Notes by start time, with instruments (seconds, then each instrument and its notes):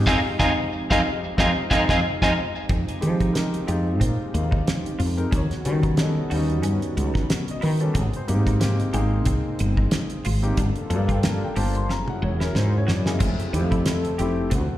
Already playing: analog synth pad F3 G#3 C4 D#4 G4
0.07 fretless electric bass F2, clean electric guitar C4 D#4 F4, grand piano C4 D#4 F4, lead electric guitar D#5 F5 G#5, kick, snare
0.39 fretless electric bass F2, grand piano C4 D#4 F4, clean electric guitar C4 D#4 F4, lead electric guitar D#5 F5 G#5, kick, snare
0.90 fretless electric bass F2, clean electric guitar C4 D#4 F4, grand piano C4 D#4 F4, lead electric guitar D#5 F5 G#5, kick, snare
1.37 fretless electric bass F2, grand piano C4 D#4 F4, clean electric guitar C4 D#4 F4, lead electric guitar D#5 F5 G#5, kick, snare
1.70 fretless electric bass F2, grand piano C4 D#4 F4, clean electric guitar C4 D#4 F4, lead electric guitar D#5 F5 G#5, kick, snare
1.89 fretless electric bass F2, grand piano C4 D#4 F4, clean electric guitar C4 D#4 F4, lead electric guitar D#5 F5 G#5, kick, snare
2.22 fretless electric bass F2, grand piano C4 D#4 F4, clean electric guitar C4 D#4 F4, lead electric guitar D#5 F5 G#5, kick, snare
2.68 fretless electric bass F2, analog synth pad F3 G#3 C4 D#4 G4, clean electric guitar C4, kick, closed hi-hat
2.88 muted fretless electric bass stroke, closed hi-hat
3.01 fretless electric bass F3, grand piano G#3 C4 D#4 G4, closed hi-hat
3.20 clean electric guitar D#4, kick, closed hi-hat
3.33 grand piano G#3 C4 D#4 A#4, snare, closed hi-hat
3.38 grand piano D#5
3.54 closed hi-hat
3.67 fretless electric bass F2, grand piano G#3 C4 D#4 F4, clean electric guitar G4, closed hi-hat
4.00 fretless electric bass A#2, clean electric guitar C4, grand piano F5, kick, closed hi-hat
4.34 fretless electric bass D#2, grand piano F5, closed hi-hat
4.51 clean electric guitar D#4, kick
4.68 snare, closed hi-hat
4.86 closed hi-hat
4.99 fretless electric bass F2, clean electric guitar F4, open hi-hat
5.17 grand piano G#3 C4 D#4 A#4, closed hi-hat
5.31 fretless electric bass D#2, analog synth pad D#3 B3 C#4 F#4, clean electric guitar C#4, kick, closed hi-hat
5.35 grand piano C#5
5.51 muted fretless electric bass stroke, snare, closed hi-hat
5.65 fretless electric bass D#3, grand piano G3 B3 C#4 F#4, closed hi-hat
5.83 clean electric guitar D#4, kick, closed hi-hat
5.97 grand piano G3 B3 C#4 A4 D#5, snare, closed hi-hat
6.30 fretless electric bass D#2, grand piano G3 B3 C#4 D#4 D#5, clean electric guitar F#4, open hi-hat
6.50 closed hi-hat
6.63 fretless electric bass G2, clean electric guitar C#4, closed hi-hat
6.82 closed hi-hat
6.97 fretless electric bass C#2, closed hi-hat
7.14 clean electric guitar D#4, kick, snare
7.30 snare, closed hi-hat
7.48 grand piano D#5, closed hi-hat
7.61 fretless electric bass D#3, clean electric guitar E4, grand piano B4, open hi-hat
7.80 grand piano G3 B3 C#4 G4 A4, closed hi-hat
7.94 fretless electric bass G#1, analog synth pad G#3 C4, clean electric guitar C4, grand piano G#4, kick, closed hi-hat
8.13 grand piano C5, muted fretless electric bass stroke, closed hi-hat
8.28 fretless electric bass G#2, grand piano A#3 C4 D#4 G4, closed hi-hat
8.47 clean electric guitar D#4, kick, closed hi-hat
8.60 grand piano A#3 C4 D#4 G4, snare, closed hi-hat
8.80 closed hi-hat
8.93 fretless electric bass G#1, grand piano A#3 C4 D#4 G#4, clean electric guitar G4, closed hi-hat
9.25 fretless electric bass C2, clean electric guitar C4, kick, closed hi-hat
9.59 fretless electric bass G1, closed hi-hat
9.77 clean electric guitar D#4, kick
9.91 snare, closed hi-hat
10.10 closed hi-hat
10.25 fretless electric bass G#1, clean electric guitar F4, open hi-hat
10.43 grand piano A#3 C4 D#4 G4, closed hi-hat
10.57 fretless electric bass G1, analog synth pad G3 A#3 D4 F4 A4, clean electric guitar D4, kick, closed hi-hat
10.75 muted fretless electric bass stroke, closed hi-hat
10.89 fretless electric bass G2, grand piano A#3 D4 F4 A4, closed hi-hat
11.08 clean electric guitar F4, grand piano G5, kick, closed hi-hat
11.23 grand piano A#3 D4 F4 A4 F5, snare, closed hi-hat
11.44 grand piano G5
11.56 fretless electric bass G1, grand piano A#3 D4 F4 C5 A5, clean electric guitar G4, open hi-hat
11.75 grand piano C6, closed hi-hat
11.89 fretless electric bass F#1, analog synth pad F#3 C#4 E4 G#4 A#4, clean electric guitar C#4, grand piano A#5, snare
12.08 grand piano F#5, high tom
12.22 fretless electric bass E1, grand piano C#5
12.40 clean electric guitar E4, grand piano A#4, snare
12.55 fretless electric bass G#2, grand piano C5, snare
12.78 grand piano C#5
12.87 fretless electric bass F#2, clean electric guitar F#4, grand piano D5, snare
13.06 grand piano A#3 C#4 E4 G#4, snare
13.11 grand piano D#5
13.19 fretless electric bass F1, analog synth pad F3 C4 G4 A4, clean electric guitar C4, kick, closed hi-hat, crash
13.25 grand piano E5
13.39 muted fretless electric bass stroke, closed hi-hat
13.53 fretless electric bass F2, grand piano A3 C4 E4 G4, closed hi-hat
13.71 clean electric guitar E4, kick, closed hi-hat
13.86 grand piano A3 C4 E4 A4, snare, closed hi-hat
14.05 closed hi-hat
14.18 fretless electric bass F1, grand piano A3 C4 E4 G4, clean electric guitar G4, closed hi-hat
14.50 fretless electric bass D2, analog synth pad D3 F#3 A#3, clean electric guitar C4, kick, closed hi-hat
14.55 grand piano F#5